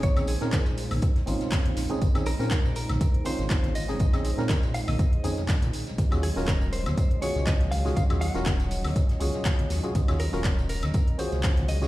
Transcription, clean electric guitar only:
X:1
M:4/4
L:1/16
Q:"Swing 16ths" 1/4=121
K:Bbm
V:1 name="Clean electric guitar"
d2 A6 z8 | z2 B4 B4 c4 e2- | e6 f e4 z4 z | z2 A2 B2 c4 d2 e2 f2 |
f2 g6 z8 | z2 B4 B4 c4 e2 |]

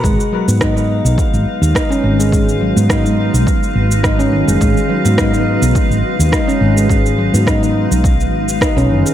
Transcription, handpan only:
X:1
M:4/4
L:1/16
Q:"Swing 16ths" 1/4=105
K:G#dor
V:1 name="Handpan"
G,2 F, B, D D4 z3 D C D, G, | G,2 F, B, D D4 z3 D C D, G, | G,2 F, B, D D4 z3 D C D, G, | G,2 F, B, D D4 z3 D C D, G, |]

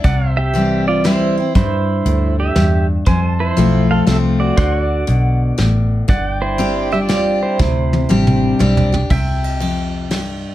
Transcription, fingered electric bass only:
X:1
M:3/4
L:1/8
Q:"Swing" 1/4=119
K:C
V:1 name="Fingered electric bass" clef=bass
C,,6 | G,,2 D,,2 E,,2 | F,,2 B,,,2 C,,2 | D,,2 B,,,2 A,,,2 |
G,,,6 | D,,2 A,,,2 B,,,2 | C,,6 |]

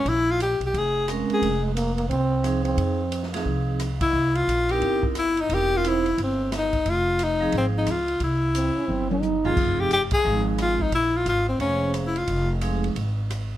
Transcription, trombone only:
X:1
M:4/4
L:1/8
Q:"Swing" 1/4=177
K:Cphr
V:1 name="Trombone"
z8 | z A, B, B, C3 C- | C3 z4 z | z8 |
z8 | z8 | z2 C D C D E2 | z8 |
z8 | z8 |]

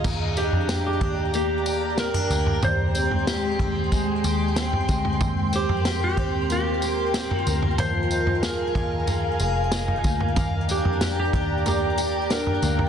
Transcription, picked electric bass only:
X:1
M:4/4
L:1/16
Q:1/4=93
K:Eb
V:1 name="Picked electric bass" clef=bass
E,,3 F,,3 E,,8 D,,2 | E,,6 E,,4 E,,4 D,,2 | E,,3 F,,3 E,,8 D,,2 | E,,6 E,,4 F,,,4 D,,2 |
E,,3 F,,3 E,,8 D,,2 |]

